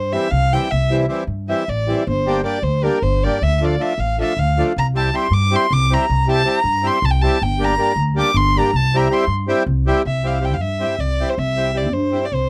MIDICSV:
0, 0, Header, 1, 4, 480
1, 0, Start_track
1, 0, Tempo, 384615
1, 896, Time_signature, 7, 3, 24, 8
1, 6888, Tempo, 377834
1, 15747, End_track
2, 0, Start_track
2, 0, Title_t, "Violin"
2, 0, Program_c, 0, 40
2, 0, Note_on_c, 0, 72, 76
2, 160, Note_on_c, 0, 76, 80
2, 179, Note_off_c, 0, 72, 0
2, 388, Note_on_c, 0, 77, 95
2, 406, Note_off_c, 0, 76, 0
2, 661, Note_on_c, 0, 79, 86
2, 680, Note_off_c, 0, 77, 0
2, 886, Note_on_c, 0, 76, 86
2, 905, Note_off_c, 0, 79, 0
2, 1143, Note_off_c, 0, 76, 0
2, 1860, Note_on_c, 0, 76, 68
2, 2109, Note_on_c, 0, 74, 78
2, 2127, Note_off_c, 0, 76, 0
2, 2596, Note_off_c, 0, 74, 0
2, 2607, Note_on_c, 0, 72, 76
2, 3034, Note_off_c, 0, 72, 0
2, 3070, Note_on_c, 0, 74, 69
2, 3286, Note_on_c, 0, 72, 76
2, 3305, Note_off_c, 0, 74, 0
2, 3544, Note_on_c, 0, 70, 81
2, 3563, Note_off_c, 0, 72, 0
2, 3776, Note_on_c, 0, 72, 82
2, 3795, Note_off_c, 0, 70, 0
2, 4036, Note_on_c, 0, 74, 81
2, 4055, Note_off_c, 0, 72, 0
2, 4278, Note_on_c, 0, 76, 96
2, 4297, Note_off_c, 0, 74, 0
2, 4469, Note_off_c, 0, 76, 0
2, 4469, Note_on_c, 0, 76, 57
2, 4553, Note_on_c, 0, 74, 67
2, 4572, Note_off_c, 0, 76, 0
2, 4756, Note_on_c, 0, 76, 74
2, 4775, Note_off_c, 0, 74, 0
2, 4991, Note_on_c, 0, 77, 75
2, 5010, Note_off_c, 0, 76, 0
2, 5240, Note_off_c, 0, 77, 0
2, 5253, Note_on_c, 0, 76, 72
2, 5476, Note_on_c, 0, 77, 83
2, 5495, Note_off_c, 0, 76, 0
2, 5729, Note_off_c, 0, 77, 0
2, 5968, Note_on_c, 0, 82, 85
2, 6073, Note_off_c, 0, 82, 0
2, 6200, Note_on_c, 0, 81, 73
2, 6429, Note_on_c, 0, 84, 79
2, 6448, Note_off_c, 0, 81, 0
2, 6653, Note_on_c, 0, 86, 90
2, 6672, Note_off_c, 0, 84, 0
2, 6930, Note_on_c, 0, 84, 89
2, 6949, Note_off_c, 0, 86, 0
2, 7153, Note_on_c, 0, 86, 99
2, 7172, Note_off_c, 0, 84, 0
2, 7414, Note_on_c, 0, 82, 82
2, 7433, Note_off_c, 0, 86, 0
2, 7878, Note_off_c, 0, 82, 0
2, 7895, Note_on_c, 0, 81, 93
2, 8110, Note_on_c, 0, 82, 87
2, 8129, Note_off_c, 0, 81, 0
2, 8605, Note_on_c, 0, 84, 85
2, 8624, Note_off_c, 0, 82, 0
2, 8833, Note_on_c, 0, 81, 94
2, 8852, Note_off_c, 0, 84, 0
2, 8907, Note_on_c, 0, 79, 82
2, 8926, Note_off_c, 0, 81, 0
2, 9042, Note_on_c, 0, 81, 86
2, 9061, Note_off_c, 0, 79, 0
2, 9316, Note_on_c, 0, 79, 95
2, 9335, Note_off_c, 0, 81, 0
2, 9586, Note_on_c, 0, 82, 99
2, 9605, Note_off_c, 0, 79, 0
2, 10006, Note_off_c, 0, 82, 0
2, 10292, Note_on_c, 0, 86, 87
2, 10504, Note_on_c, 0, 84, 97
2, 10523, Note_off_c, 0, 86, 0
2, 10789, Note_on_c, 0, 82, 80
2, 10808, Note_off_c, 0, 84, 0
2, 11007, Note_on_c, 0, 81, 97
2, 11026, Note_off_c, 0, 82, 0
2, 11265, Note_on_c, 0, 82, 82
2, 11284, Note_off_c, 0, 81, 0
2, 11471, Note_on_c, 0, 84, 76
2, 11490, Note_off_c, 0, 82, 0
2, 11678, Note_off_c, 0, 84, 0
2, 12666, Note_on_c, 0, 76, 85
2, 12917, Note_on_c, 0, 77, 74
2, 12936, Note_off_c, 0, 76, 0
2, 13148, Note_on_c, 0, 79, 73
2, 13167, Note_off_c, 0, 77, 0
2, 13262, Note_on_c, 0, 77, 64
2, 13281, Note_off_c, 0, 79, 0
2, 13355, Note_on_c, 0, 76, 81
2, 13374, Note_off_c, 0, 77, 0
2, 13854, Note_on_c, 0, 74, 82
2, 13873, Note_off_c, 0, 76, 0
2, 14227, Note_on_c, 0, 72, 63
2, 14246, Note_off_c, 0, 74, 0
2, 14341, Note_on_c, 0, 76, 91
2, 14360, Note_off_c, 0, 72, 0
2, 14828, Note_on_c, 0, 74, 73
2, 14848, Note_off_c, 0, 76, 0
2, 15040, Note_on_c, 0, 72, 75
2, 15059, Note_off_c, 0, 74, 0
2, 15439, Note_on_c, 0, 74, 77
2, 15458, Note_off_c, 0, 72, 0
2, 15554, Note_on_c, 0, 72, 86
2, 15573, Note_off_c, 0, 74, 0
2, 15747, Note_off_c, 0, 72, 0
2, 15747, End_track
3, 0, Start_track
3, 0, Title_t, "Accordion"
3, 0, Program_c, 1, 21
3, 151, Note_on_c, 1, 52, 59
3, 157, Note_on_c, 1, 55, 55
3, 164, Note_on_c, 1, 60, 54
3, 177, Note_on_c, 1, 64, 68
3, 342, Note_off_c, 1, 52, 0
3, 345, Note_off_c, 1, 55, 0
3, 349, Note_off_c, 1, 60, 0
3, 355, Note_off_c, 1, 64, 0
3, 657, Note_on_c, 1, 52, 58
3, 664, Note_on_c, 1, 55, 54
3, 667, Note_on_c, 1, 60, 57
3, 673, Note_on_c, 1, 64, 64
3, 845, Note_off_c, 1, 52, 0
3, 848, Note_off_c, 1, 55, 0
3, 850, Note_off_c, 1, 60, 0
3, 853, Note_off_c, 1, 64, 0
3, 1124, Note_on_c, 1, 52, 60
3, 1128, Note_on_c, 1, 55, 52
3, 1135, Note_on_c, 1, 60, 54
3, 1148, Note_on_c, 1, 64, 68
3, 1313, Note_off_c, 1, 52, 0
3, 1315, Note_off_c, 1, 55, 0
3, 1318, Note_off_c, 1, 60, 0
3, 1325, Note_off_c, 1, 64, 0
3, 1349, Note_on_c, 1, 52, 65
3, 1354, Note_on_c, 1, 55, 50
3, 1364, Note_on_c, 1, 60, 64
3, 1366, Note_on_c, 1, 64, 68
3, 1535, Note_off_c, 1, 52, 0
3, 1538, Note_off_c, 1, 55, 0
3, 1543, Note_off_c, 1, 60, 0
3, 1544, Note_off_c, 1, 64, 0
3, 1851, Note_on_c, 1, 52, 65
3, 1859, Note_on_c, 1, 55, 51
3, 1862, Note_on_c, 1, 60, 47
3, 1867, Note_on_c, 1, 64, 63
3, 2037, Note_off_c, 1, 52, 0
3, 2041, Note_off_c, 1, 55, 0
3, 2043, Note_off_c, 1, 60, 0
3, 2045, Note_off_c, 1, 64, 0
3, 2338, Note_on_c, 1, 52, 60
3, 2344, Note_on_c, 1, 55, 56
3, 2350, Note_on_c, 1, 60, 55
3, 2356, Note_on_c, 1, 64, 63
3, 2530, Note_off_c, 1, 52, 0
3, 2533, Note_off_c, 1, 55, 0
3, 2536, Note_off_c, 1, 60, 0
3, 2539, Note_off_c, 1, 64, 0
3, 2823, Note_on_c, 1, 55, 56
3, 2828, Note_on_c, 1, 58, 59
3, 2836, Note_on_c, 1, 62, 59
3, 2841, Note_on_c, 1, 67, 74
3, 3006, Note_off_c, 1, 55, 0
3, 3008, Note_off_c, 1, 58, 0
3, 3012, Note_off_c, 1, 62, 0
3, 3014, Note_off_c, 1, 67, 0
3, 3030, Note_on_c, 1, 55, 56
3, 3037, Note_on_c, 1, 58, 53
3, 3048, Note_on_c, 1, 62, 50
3, 3055, Note_on_c, 1, 67, 62
3, 3219, Note_off_c, 1, 55, 0
3, 3222, Note_off_c, 1, 58, 0
3, 3228, Note_off_c, 1, 62, 0
3, 3231, Note_off_c, 1, 67, 0
3, 3522, Note_on_c, 1, 55, 53
3, 3531, Note_on_c, 1, 58, 50
3, 3540, Note_on_c, 1, 62, 60
3, 3553, Note_on_c, 1, 67, 64
3, 3714, Note_off_c, 1, 55, 0
3, 3719, Note_off_c, 1, 58, 0
3, 3724, Note_off_c, 1, 62, 0
3, 3730, Note_off_c, 1, 67, 0
3, 4038, Note_on_c, 1, 55, 63
3, 4041, Note_on_c, 1, 58, 58
3, 4053, Note_on_c, 1, 62, 57
3, 4060, Note_on_c, 1, 67, 61
3, 4220, Note_off_c, 1, 55, 0
3, 4221, Note_off_c, 1, 58, 0
3, 4228, Note_off_c, 1, 62, 0
3, 4231, Note_off_c, 1, 67, 0
3, 4505, Note_on_c, 1, 53, 65
3, 4512, Note_on_c, 1, 57, 60
3, 4514, Note_on_c, 1, 62, 52
3, 4530, Note_on_c, 1, 65, 69
3, 4685, Note_off_c, 1, 53, 0
3, 4689, Note_off_c, 1, 57, 0
3, 4689, Note_off_c, 1, 62, 0
3, 4698, Note_off_c, 1, 65, 0
3, 4728, Note_on_c, 1, 53, 54
3, 4730, Note_on_c, 1, 57, 55
3, 4737, Note_on_c, 1, 62, 55
3, 4744, Note_on_c, 1, 65, 59
3, 4906, Note_off_c, 1, 53, 0
3, 4907, Note_off_c, 1, 57, 0
3, 4911, Note_off_c, 1, 62, 0
3, 4914, Note_off_c, 1, 65, 0
3, 5221, Note_on_c, 1, 53, 55
3, 5227, Note_on_c, 1, 57, 53
3, 5238, Note_on_c, 1, 65, 65
3, 5241, Note_on_c, 1, 62, 50
3, 5400, Note_off_c, 1, 53, 0
3, 5404, Note_off_c, 1, 57, 0
3, 5409, Note_off_c, 1, 65, 0
3, 5411, Note_off_c, 1, 62, 0
3, 5710, Note_on_c, 1, 53, 62
3, 5717, Note_on_c, 1, 57, 55
3, 5723, Note_on_c, 1, 62, 51
3, 5728, Note_on_c, 1, 65, 66
3, 5891, Note_off_c, 1, 53, 0
3, 5895, Note_off_c, 1, 57, 0
3, 5898, Note_off_c, 1, 62, 0
3, 5900, Note_off_c, 1, 65, 0
3, 6174, Note_on_c, 1, 55, 55
3, 6178, Note_on_c, 1, 60, 54
3, 6190, Note_on_c, 1, 64, 51
3, 6200, Note_on_c, 1, 67, 67
3, 6354, Note_off_c, 1, 55, 0
3, 6356, Note_off_c, 1, 60, 0
3, 6362, Note_off_c, 1, 64, 0
3, 6367, Note_off_c, 1, 67, 0
3, 6396, Note_on_c, 1, 55, 49
3, 6407, Note_on_c, 1, 60, 53
3, 6414, Note_on_c, 1, 64, 46
3, 6421, Note_on_c, 1, 67, 66
3, 6573, Note_off_c, 1, 55, 0
3, 6579, Note_off_c, 1, 60, 0
3, 6582, Note_off_c, 1, 64, 0
3, 6586, Note_off_c, 1, 67, 0
3, 6877, Note_on_c, 1, 55, 55
3, 6880, Note_on_c, 1, 60, 48
3, 6891, Note_on_c, 1, 64, 57
3, 6899, Note_on_c, 1, 67, 68
3, 7064, Note_off_c, 1, 55, 0
3, 7066, Note_off_c, 1, 60, 0
3, 7071, Note_off_c, 1, 64, 0
3, 7075, Note_off_c, 1, 67, 0
3, 7370, Note_on_c, 1, 55, 59
3, 7378, Note_on_c, 1, 60, 57
3, 7389, Note_on_c, 1, 64, 56
3, 7402, Note_on_c, 1, 67, 69
3, 7560, Note_off_c, 1, 55, 0
3, 7564, Note_off_c, 1, 60, 0
3, 7570, Note_off_c, 1, 64, 0
3, 7576, Note_off_c, 1, 67, 0
3, 7843, Note_on_c, 1, 55, 70
3, 7851, Note_on_c, 1, 60, 63
3, 7857, Note_on_c, 1, 64, 57
3, 7863, Note_on_c, 1, 67, 60
3, 8030, Note_off_c, 1, 55, 0
3, 8034, Note_off_c, 1, 60, 0
3, 8037, Note_off_c, 1, 64, 0
3, 8040, Note_off_c, 1, 67, 0
3, 8060, Note_on_c, 1, 55, 52
3, 8072, Note_on_c, 1, 60, 47
3, 8078, Note_on_c, 1, 64, 53
3, 8089, Note_on_c, 1, 67, 62
3, 8249, Note_off_c, 1, 55, 0
3, 8255, Note_off_c, 1, 60, 0
3, 8258, Note_off_c, 1, 64, 0
3, 8263, Note_off_c, 1, 67, 0
3, 8546, Note_on_c, 1, 55, 61
3, 8554, Note_on_c, 1, 60, 54
3, 8561, Note_on_c, 1, 64, 57
3, 8568, Note_on_c, 1, 67, 68
3, 8742, Note_off_c, 1, 55, 0
3, 8746, Note_off_c, 1, 60, 0
3, 8750, Note_off_c, 1, 64, 0
3, 8753, Note_off_c, 1, 67, 0
3, 9052, Note_on_c, 1, 55, 69
3, 9058, Note_on_c, 1, 60, 62
3, 9068, Note_on_c, 1, 64, 56
3, 9077, Note_on_c, 1, 67, 74
3, 9243, Note_off_c, 1, 55, 0
3, 9246, Note_off_c, 1, 60, 0
3, 9251, Note_off_c, 1, 64, 0
3, 9256, Note_off_c, 1, 67, 0
3, 9519, Note_on_c, 1, 55, 72
3, 9530, Note_on_c, 1, 58, 57
3, 9534, Note_on_c, 1, 62, 63
3, 9542, Note_on_c, 1, 67, 72
3, 9709, Note_off_c, 1, 55, 0
3, 9715, Note_off_c, 1, 58, 0
3, 9717, Note_off_c, 1, 62, 0
3, 9721, Note_off_c, 1, 67, 0
3, 9753, Note_on_c, 1, 55, 57
3, 9758, Note_on_c, 1, 58, 51
3, 9768, Note_on_c, 1, 62, 57
3, 9775, Note_on_c, 1, 67, 64
3, 9936, Note_off_c, 1, 55, 0
3, 9939, Note_off_c, 1, 58, 0
3, 9944, Note_off_c, 1, 62, 0
3, 9947, Note_off_c, 1, 67, 0
3, 10238, Note_on_c, 1, 55, 57
3, 10241, Note_on_c, 1, 58, 55
3, 10243, Note_on_c, 1, 62, 61
3, 10260, Note_on_c, 1, 67, 70
3, 10428, Note_off_c, 1, 55, 0
3, 10430, Note_off_c, 1, 58, 0
3, 10431, Note_off_c, 1, 62, 0
3, 10439, Note_off_c, 1, 67, 0
3, 10754, Note_on_c, 1, 55, 65
3, 10757, Note_on_c, 1, 58, 58
3, 10768, Note_on_c, 1, 62, 59
3, 10774, Note_on_c, 1, 67, 71
3, 10934, Note_off_c, 1, 55, 0
3, 10936, Note_off_c, 1, 58, 0
3, 10941, Note_off_c, 1, 62, 0
3, 10944, Note_off_c, 1, 67, 0
3, 11238, Note_on_c, 1, 55, 73
3, 11239, Note_on_c, 1, 60, 62
3, 11251, Note_on_c, 1, 64, 65
3, 11256, Note_on_c, 1, 67, 78
3, 11409, Note_off_c, 1, 55, 0
3, 11409, Note_off_c, 1, 60, 0
3, 11415, Note_off_c, 1, 64, 0
3, 11418, Note_off_c, 1, 67, 0
3, 11435, Note_on_c, 1, 55, 61
3, 11441, Note_on_c, 1, 60, 47
3, 11457, Note_on_c, 1, 64, 57
3, 11459, Note_on_c, 1, 67, 71
3, 11616, Note_off_c, 1, 55, 0
3, 11619, Note_off_c, 1, 60, 0
3, 11627, Note_off_c, 1, 64, 0
3, 11628, Note_off_c, 1, 67, 0
3, 11916, Note_on_c, 1, 55, 71
3, 11921, Note_on_c, 1, 60, 62
3, 11927, Note_on_c, 1, 64, 68
3, 11933, Note_on_c, 1, 67, 78
3, 12106, Note_off_c, 1, 55, 0
3, 12109, Note_off_c, 1, 60, 0
3, 12112, Note_off_c, 1, 64, 0
3, 12115, Note_off_c, 1, 67, 0
3, 12409, Note_on_c, 1, 55, 79
3, 12414, Note_on_c, 1, 60, 68
3, 12420, Note_on_c, 1, 64, 81
3, 12431, Note_on_c, 1, 67, 77
3, 12600, Note_off_c, 1, 55, 0
3, 12603, Note_off_c, 1, 60, 0
3, 12606, Note_off_c, 1, 64, 0
3, 12611, Note_off_c, 1, 67, 0
3, 12878, Note_on_c, 1, 55, 55
3, 12890, Note_on_c, 1, 60, 51
3, 12895, Note_on_c, 1, 64, 47
3, 12904, Note_on_c, 1, 67, 58
3, 13067, Note_off_c, 1, 55, 0
3, 13073, Note_off_c, 1, 60, 0
3, 13075, Note_off_c, 1, 64, 0
3, 13080, Note_off_c, 1, 67, 0
3, 13093, Note_on_c, 1, 55, 49
3, 13102, Note_on_c, 1, 60, 44
3, 13112, Note_on_c, 1, 64, 41
3, 13122, Note_on_c, 1, 67, 51
3, 13284, Note_off_c, 1, 55, 0
3, 13288, Note_off_c, 1, 60, 0
3, 13293, Note_off_c, 1, 64, 0
3, 13298, Note_off_c, 1, 67, 0
3, 13596, Note_on_c, 1, 55, 53
3, 13596, Note_on_c, 1, 60, 49
3, 13612, Note_on_c, 1, 64, 46
3, 13617, Note_on_c, 1, 67, 57
3, 13784, Note_off_c, 1, 55, 0
3, 13785, Note_off_c, 1, 60, 0
3, 13792, Note_off_c, 1, 64, 0
3, 13795, Note_off_c, 1, 67, 0
3, 14100, Note_on_c, 1, 55, 55
3, 14104, Note_on_c, 1, 60, 46
3, 14110, Note_on_c, 1, 64, 51
3, 14118, Note_on_c, 1, 67, 57
3, 14283, Note_off_c, 1, 55, 0
3, 14286, Note_off_c, 1, 60, 0
3, 14288, Note_off_c, 1, 64, 0
3, 14292, Note_off_c, 1, 67, 0
3, 14568, Note_on_c, 1, 55, 52
3, 14571, Note_on_c, 1, 60, 51
3, 14580, Note_on_c, 1, 64, 49
3, 14585, Note_on_c, 1, 67, 57
3, 14749, Note_off_c, 1, 55, 0
3, 14751, Note_off_c, 1, 60, 0
3, 14756, Note_off_c, 1, 64, 0
3, 14758, Note_off_c, 1, 67, 0
3, 14781, Note_on_c, 1, 55, 45
3, 14792, Note_on_c, 1, 60, 50
3, 14792, Note_on_c, 1, 64, 40
3, 14806, Note_on_c, 1, 67, 54
3, 14965, Note_off_c, 1, 55, 0
3, 14971, Note_off_c, 1, 60, 0
3, 14971, Note_off_c, 1, 64, 0
3, 14978, Note_off_c, 1, 67, 0
3, 15258, Note_on_c, 1, 55, 47
3, 15269, Note_on_c, 1, 60, 48
3, 15274, Note_on_c, 1, 64, 47
3, 15285, Note_on_c, 1, 67, 54
3, 15453, Note_off_c, 1, 55, 0
3, 15458, Note_off_c, 1, 60, 0
3, 15461, Note_off_c, 1, 64, 0
3, 15466, Note_off_c, 1, 67, 0
3, 15747, End_track
4, 0, Start_track
4, 0, Title_t, "Upright bass"
4, 0, Program_c, 2, 32
4, 0, Note_on_c, 2, 43, 69
4, 184, Note_off_c, 2, 43, 0
4, 392, Note_on_c, 2, 36, 83
4, 694, Note_off_c, 2, 36, 0
4, 896, Note_on_c, 2, 36, 78
4, 1312, Note_off_c, 2, 36, 0
4, 1587, Note_on_c, 2, 43, 69
4, 1887, Note_off_c, 2, 43, 0
4, 2099, Note_on_c, 2, 33, 73
4, 2394, Note_off_c, 2, 33, 0
4, 2586, Note_on_c, 2, 31, 89
4, 2999, Note_off_c, 2, 31, 0
4, 3272, Note_on_c, 2, 38, 77
4, 3571, Note_off_c, 2, 38, 0
4, 3772, Note_on_c, 2, 31, 81
4, 4068, Note_off_c, 2, 31, 0
4, 4263, Note_on_c, 2, 38, 86
4, 4676, Note_off_c, 2, 38, 0
4, 4963, Note_on_c, 2, 33, 79
4, 5256, Note_off_c, 2, 33, 0
4, 5449, Note_on_c, 2, 38, 83
4, 5743, Note_off_c, 2, 38, 0
4, 5946, Note_on_c, 2, 36, 77
4, 6353, Note_off_c, 2, 36, 0
4, 6623, Note_on_c, 2, 43, 78
4, 6917, Note_off_c, 2, 43, 0
4, 7125, Note_on_c, 2, 36, 94
4, 7421, Note_off_c, 2, 36, 0
4, 7618, Note_on_c, 2, 36, 86
4, 8031, Note_off_c, 2, 36, 0
4, 8310, Note_on_c, 2, 43, 81
4, 8607, Note_off_c, 2, 43, 0
4, 8796, Note_on_c, 2, 36, 88
4, 9096, Note_off_c, 2, 36, 0
4, 9297, Note_on_c, 2, 31, 84
4, 9711, Note_off_c, 2, 31, 0
4, 9985, Note_on_c, 2, 38, 80
4, 10283, Note_off_c, 2, 38, 0
4, 10474, Note_on_c, 2, 31, 91
4, 10774, Note_off_c, 2, 31, 0
4, 10969, Note_on_c, 2, 36, 84
4, 11384, Note_off_c, 2, 36, 0
4, 11656, Note_on_c, 2, 43, 81
4, 11956, Note_off_c, 2, 43, 0
4, 12154, Note_on_c, 2, 36, 83
4, 12453, Note_off_c, 2, 36, 0
4, 12649, Note_on_c, 2, 36, 74
4, 13333, Note_off_c, 2, 36, 0
4, 13333, Note_on_c, 2, 43, 68
4, 13633, Note_off_c, 2, 43, 0
4, 13832, Note_on_c, 2, 36, 66
4, 14130, Note_off_c, 2, 36, 0
4, 14329, Note_on_c, 2, 36, 83
4, 15019, Note_off_c, 2, 36, 0
4, 15019, Note_on_c, 2, 43, 74
4, 15315, Note_off_c, 2, 43, 0
4, 15524, Note_on_c, 2, 36, 73
4, 15747, Note_off_c, 2, 36, 0
4, 15747, End_track
0, 0, End_of_file